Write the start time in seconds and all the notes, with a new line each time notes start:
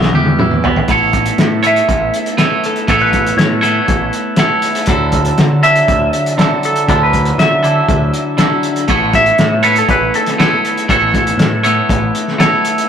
Already playing: E3 B3 E4 E5
0.02 snare
0.13 E2 G4, high tom
0.26 high tom
0.39 E4, mid tom
0.51 mid tom
0.64 B3, floor tom
0.76 floor tom
0.88 A1 A3 B3 E4 A4 C#5, kick, closed hi-hat
1.13 kick, closed hi-hat
1.26 closed hi-hat
1.38 A2, snare, closed hi-hat
1.63 A3 B3 E4 A4 C#5, closed hi-hat
1.67 E5
1.76 closed hi-hat
1.88 A1, kick, closed hi-hat
2.14 closed hi-hat
2.26 closed hi-hat
2.37 A3 B3 E4 A4 C#5, snare, closed hi-hat
2.64 A4, closed hi-hat
2.76 closed hi-hat
2.87 A1 A3 B3 E4 A4 C#5, kick, closed hi-hat
3.02 B4
3.13 kick, closed hi-hat
3.27 closed hi-hat
3.37 A2 C#5, snare, closed hi-hat
3.61 A3 B3 E4 A4 C#5, closed hi-hat
3.88 A1, kick, closed hi-hat
4.13 closed hi-hat
4.36 A3 B3 E4 A4 C#5, snare, closed hi-hat
4.62 closed hi-hat
4.75 closed hi-hat
4.86 D2 D3 F#3 D4 E4, kick, closed hi-hat
4.90 A4
5.12 kick, closed hi-hat
5.25 closed hi-hat
5.38 D3, snare, closed hi-hat
5.63 D3 F#3 D4 E4 A4 E5, closed hi-hat
5.76 closed hi-hat
5.88 D2, kick, closed hi-hat
6.13 closed hi-hat
6.26 closed hi-hat
6.37 D3 F#3 D4 E4 A4, snare, closed hi-hat
6.63 A4, closed hi-hat
6.76 closed hi-hat
6.87 D2 D3 F#3 D4 E4 A4, kick, closed hi-hat
7.03 B4
7.13 kick, closed hi-hat
7.25 closed hi-hat
7.38 D3 E5, snare, closed hi-hat
7.63 D3 F#3 D4 E4 A4, closed hi-hat
7.89 D2, kick, closed hi-hat
8.14 closed hi-hat
8.37 D3 F#3 D4 E4 A4, snare, closed hi-hat
8.63 closed hi-hat
8.76 closed hi-hat
8.88 A1 A3 B3 E4 A4 C#5, kick, closed hi-hat
9.13 E5, kick, closed hi-hat
9.26 closed hi-hat
9.38 A2, snare, closed hi-hat
9.63 A3 B3 E4 A4 B4 C#5, closed hi-hat
9.76 A4, closed hi-hat
9.89 A1 B4, kick, closed hi-hat
10.14 A4, closed hi-hat
10.26 snare, closed hi-hat
10.38 A3 B3 E4 A4 C#5, snare, closed hi-hat
10.65 closed hi-hat
10.78 closed hi-hat
10.88 A1 A3 B3 E4 A4 C#5, kick, closed hi-hat
11.14 kick, closed hi-hat
11.27 closed hi-hat
11.38 A2, snare, closed hi-hat
11.63 A3 B3 E4 A4 C#5, closed hi-hat
11.89 A1, kick, closed hi-hat
12.15 closed hi-hat
12.28 snare
12.38 A3 B3 E4 A4 C#5, snare, closed hi-hat
12.65 closed hi-hat
12.78 closed hi-hat